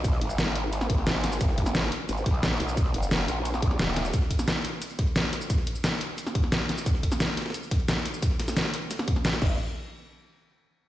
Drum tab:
CC |--------------------------------|--------------------------------|--------------------------------|--------------------------------|
RD |x---x---x---x---x---x---x---x---|x---x-x-x---x---x---x-x-x---x---|x---x---x---x---x---x---x---x---|x---x-x-x---x---x---x-x-x---x---|
HH |x---x---x---x---x---x---x---x---|x---x---x---x---x---x---x---x---|x---x---x---x---x---x---x---x---|x---x---x---x---x---x---x---x---|
SH |x---x-x-x---x---x-x-----x---x-x-|x---x-x-x---x---x-x-----x---x-x-|x---x-x-x---x---x-x-----x---x-x-|x---x-x-x---x---x-x-----x---x-x-|
SD |--o-----o-o-------o---o-o-o-o-o-|--o---o-o-o---------o---o-o-o---|--o-----o-o-------o---o-o-o-o-o-|--o---o-o-o---------o---o-o-o---|
BD |o-------------------o-----------|o---o---------------o-----------|o-------------------o-----------|o---o---------------o-----------|

CC |--------------------------------|--------------------------------|----------------------------x---|--------------------------------|
RD |x---x---x---x---x---x---x---x---|x---x-x-x---xxxxx---x-x-x---x---|x---x-x-x-x-x-x-x---x---x-x-----|--------------------------------|
HH |x---x---x---x---x---x---x---x---|x---x---x---x---x---x---x---x---|x---x---x---x---x---x---x-------|--------------------------------|
SH |x---x-x-x---x---x-x-----x---x-x-|x---x-x-x---x---x-x-----x---x-x-|x---x-x-x---x---x-x-----x-------|--------------------------------|
SD |--o-----o-o-------o---o-o-o-o-o-|--o---o-o-o-oooo----o---o-o-o---|--o-o-o-o-o-----o-o---o-o-o-----|--------------------------------|
BD |o-------------------o-----------|o---o---------------o-----------|o-------------------o-------o---|--------------------------------|